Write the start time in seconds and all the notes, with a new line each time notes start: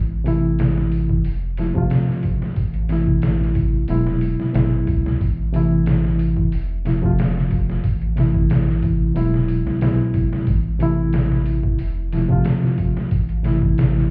Already playing: A1
0.24 C3 E3 A3 E4, open hi-hat
0.59 snare, open hi-hat
0.77 snare
0.92 open hi-hat
1.09 kick
1.24 F1, open hi-hat
1.57 C3 F3 A3 E4, snare, open hi-hat
1.75 C3 F3 A3 F4, kick
1.90 snare, open hi-hat
2.09 snare
2.23 kick, open hi-hat
2.42 snare
2.56 A1, kick, open hi-hat
2.74 closed hi-hat
2.89 C3 E3 A3 E4, snare, open hi-hat
3.07 kick
3.22 snare, open hi-hat
3.41 snare
3.55 kick, open hi-hat
3.88 E1 B2 F#3 G#3 E4, open hi-hat
4.07 snare
4.21 open hi-hat
4.40 snare
4.54 G#1 B2 F#3 G#3 E4, snare, open hi-hat
4.87 C#2, kick, open hi-hat
5.06 snare
5.20 A1, kick, open hi-hat
5.53 C3 E3 A3 E4, open hi-hat
5.86 snare, open hi-hat
6.05 snare
6.19 open hi-hat
6.37 kick
6.52 F1, open hi-hat
6.85 C3 F3 A3 E4, snare, open hi-hat
7.02 C3 F3 A3 F4, kick
7.19 snare, open hi-hat
7.37 snare
7.51 F1, kick, open hi-hat
7.70 snare
7.84 A1, kick, open hi-hat
8.02 closed hi-hat
8.16 C3 E3 A3, snare, open hi-hat
8.20 E4
8.34 kick
8.50 snare, open hi-hat
8.68 snare
8.82 kick, open hi-hat
9.15 E1 B2 F#3 G#3 E4, open hi-hat
9.34 snare
9.48 open hi-hat
9.66 B1, snare
9.81 B2 F#3 G#3 E4, snare, open hi-hat
10.14 kick, open hi-hat
10.33 snare
10.47 A1, kick, open hi-hat
10.79 C3 E3 A3 E4, open hi-hat
11.13 snare, open hi-hat
11.32 snare
11.46 open hi-hat
11.63 kick
11.79 F1, open hi-hat
12.12 C3 F3 A3 E4, snare, open hi-hat
12.29 C3 F3 A3 F4, kick
12.44 snare, open hi-hat
12.63 snare
12.78 kick, open hi-hat
12.97 snare
13.11 A1, kick, open hi-hat
13.29 closed hi-hat
13.43 C3 E3 A3 E4, snare, open hi-hat
13.62 kick
13.78 snare, open hi-hat
13.97 snare